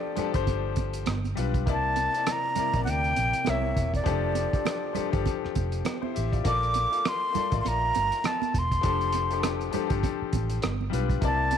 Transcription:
Already playing: F3 D4 G4 A4 D5
0.15 F3 D4 G4 A4, muted fingered electric bass stroke, closed hi-hat, low conga
0.32 G1 F3 D4 G4 C5, kick, closed hi-hat
0.47 kick, closed hi-hat, muted conga
0.76 kick, closed hi-hat, muted conga
0.94 closed hi-hat
1.06 G1, cross-stick, closed hi-hat, high conga
1.24 closed hi-hat, high conga
1.35 B1 G3 D4 F4 B4, closed hi-hat
1.54 kick, closed hi-hat
1.66 C2 C3 A#3 E4 D5, kick, closed hi-hat
1.71 A5
1.96 closed hi-hat, muted conga
2.14 C3 A#3 E4 D5, closed hi-hat
2.27 cross-stick, closed hi-hat, high conga
2.32 A#5
2.55 C3 A#3 E4 D5, muted fingered electric bass stroke, closed hi-hat, low conga
2.73 A#1 C3 A#3 E4 D5, kick, closed hi-hat
2.84 D2 F#5, closed hi-hat, muted conga
2.90 G5
3.04 closed hi-hat
3.16 A#1, closed hi-hat, muted conga
3.33 closed hi-hat
3.45 C2 C3 A#3 E4 C#5, cross-stick, closed hi-hat, high conga
3.50 E5
3.62 high conga
3.77 E1, kick, closed hi-hat
3.94 D5, kick, closed hi-hat
4.04 F1 F3 D4 G4 A4, kick, closed hi-hat, muted conga
4.35 closed hi-hat, muted conga
4.51 F3 D4 G4 A4, kick, closed hi-hat
4.65 cross-stick, closed hi-hat, high conga
4.93 F3 D4 G4 A4, closed hi-hat, low conga
4.98 muted fingered electric bass stroke
5.11 G1 F3 D4 G4 A4, kick, closed hi-hat
5.26 kick, closed hi-hat, muted conga
5.45 muted fingered electric bass stroke, cross-stick
5.55 F1, kick, closed hi-hat, muted conga
5.72 closed hi-hat
5.85 cross-stick, closed hi-hat, high conga
6.02 E4 C5, high conga
6.15 A1 G4 E5, closed hi-hat
6.32 F4 D5, kick, closed hi-hat
6.44 A#1 A#3 F4 A4 D5 D6, kick, closed hi-hat, muted conga
6.63 closed hi-hat
6.74 closed hi-hat, muted conga
6.90 A#3 F4 A4, closed hi-hat
6.94 F5
7.05 C6, cross-stick, closed hi-hat, high conga
7.33 A#3 F4 A4, muted fingered electric bass stroke, closed hi-hat, low conga
7.37 D5
7.51 A1 A3 A#3 F4 D5, kick, closed hi-hat
7.61 C6
7.65 A#1 A#5, closed hi-hat, muted conga
7.95 G1, closed hi-hat, muted conga
8.12 closed hi-hat
8.24 A5, cross-stick, closed hi-hat, high conga
8.42 closed hi-hat, high conga
8.54 E1, kick, closed hi-hat
8.59 C6
8.71 kick, closed hi-hat
8.81 F1 F3 D4 G4 A4, kick, closed hi-hat
9.01 closed hi-hat
9.12 closed hi-hat, muted conga
9.30 F3 D4 G4 A4, closed hi-hat
9.43 cross-stick, closed hi-hat, high conga
9.61 closed hi-hat
9.71 F3 D4 G4 A4, muted fingered electric bass stroke, closed hi-hat, low conga
9.87 G1 F3 D4 G4 A4, kick, closed hi-hat
10.03 kick, closed hi-hat, muted conga
10.22 muted fingered electric bass stroke
10.33 A1, kick, closed hi-hat, muted conga
10.50 closed hi-hat
10.62 G1, cross-stick, closed hi-hat, high conga
10.81 high conga
10.90 B1 G3 D4 F4 B4, closed hi-hat
11.10 kick, closed hi-hat
11.21 C2 C3 A#3 E4 D5 A5, kick, closed hi-hat
11.51 closed hi-hat, muted conga

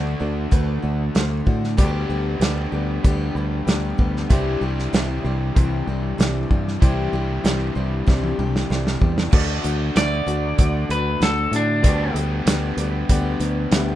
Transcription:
Already playing: D2 D3 A3 D4 F#4
0.20 D2 A3 D4 F#4 A4 D5
0.51 D2 D3 A3 D4 F#4 A4 B4, kick, closed hi-hat
0.82 D2 A3 D4 F#4
1.15 D2 D3 A3 D4 F#4 A4 C5, snare, closed hi-hat
1.46 A2 A3 D4 F#4, kick
1.64 snare
1.77 D2 D3 G3 B3 G4 B4 D5, kick, closed hi-hat
2.09 D2 G3 B3 G4
2.39 D2 D3 G3 B3 G4 B4 D5, snare, closed hi-hat
2.44 G4
2.72 D2 G3 B3 G4 B4 D5
3.02 D2 D3 G3 B3 G4 B4 D5, kick, closed hi-hat
3.06 G4
3.35 D2 G3 B3 G4 B5
3.66 D2 D3 G3 B3 G4 B4 D5 G5, snare, closed hi-hat
3.98 D2 G3 B3 G4 F#5, kick
4.16 snare
4.29 C2 C3 E3 G3 D4 E4 G4 C5 D5, kick, closed hi-hat
4.61 C2 G3 D4 G4
4.79 snare
4.92 C2 E3 G3 D4 E4 G4 C5 D5, snare, closed hi-hat
5.23 C2 G3 D4 E4 G4 C5 D5
5.55 C2 C3 E3 G3 D4 E4 G4 C5 E5, kick, closed hi-hat
5.87 C2 G3 D4 G4
6.18 C2 E3 G3 D4 E4 G4 C5 D5, snare, closed hi-hat
6.51 G2 G3 D4 G4, kick
6.68 snare
6.81 C2 C3 E3 G3 D4 E4 G4 C5 D5, kick, closed hi-hat
7.13 C2 G3 D4 G4
7.43 C2 E3 G3 D4 E4 G4 C5 D5, snare, closed hi-hat
7.75 C2 G3 D4 E4 G4 C5 D5
8.06 C2 C3 E3 G3 D4 E4 G4 C5 D5, kick, snare
8.24 high tom
8.38 C2 G3 D4 G4, mid tom
8.56 snare
8.70 C2 E3 G3 D4 E4 G4 C5 D5, snare
8.87 snare
9.01 E2 G3 D4 G4, kick
9.18 snare
9.32 D2 D3 A3 D4 F#4 A4 D5, kick, crash
9.63 D2 A3 D4 F#4, closed hi-hat
9.95 D2 D3 A3 D4 F#4 A4 D5 E5, snare, closed hi-hat
10.26 D2 A3 D4 F#4 A4 D5, closed hi-hat
10.57 D2 D3 A3 D4 F#4 A4 D5, kick, closed hi-hat
10.89 D2 A3 D4 F#4 B4, closed hi-hat
11.20 D2 D3 A3 D4 F#4 A4 D5, snare, closed hi-hat
11.51 A2 A3 D4 F#4, closed hi-hat
11.56 D4
11.81 D2 D3 G3 G4 B4 D5, kick, closed hi-hat
11.86 B3 G4
12.14 D2 G3 B3 G4, closed hi-hat
12.45 D2 D3 G3 B3 G4 B4 D5, snare, closed hi-hat
12.77 D2 G3 B3 G4 B4 D5, closed hi-hat
13.09 D2 D3 G3 B3 G4 B4 D5, kick, closed hi-hat
13.40 D2 G3 B3 G4, closed hi-hat
13.71 D2 D3 G3 B3 G4 B4 E5 B5, snare, closed hi-hat
13.87 G5

